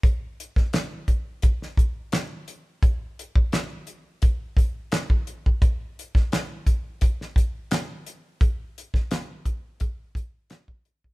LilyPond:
\new DrumStaff \with { instrumentName = "Drums" } \drummode { \time 4/4 \tempo 4 = 86 <hh bd>8 hh16 <bd sn>16 <hc hh sn>8 <hh bd>8 <hh bd>16 sn16 <hh bd>8 <hc hh sn>8 hh8 | <hh bd>8 hh16 bd16 <hc hh sn>8 hh8 <hh bd>8 <hh bd>8 <hc hh sn>16 bd16 hh16 bd16 | <hh bd>8 hh16 <bd sn>16 <hc hh sn>8 <hh bd>8 <hh bd>16 sn16 <hh bd>8 <hc hh sn>8 hh8 | <hh bd>8 hh16 <bd sn>16 <hc hh sn>8 <hh bd>8 <hh bd>8 <hh bd>8 <hc hh sn>16 bd16 hh16 bd16 | }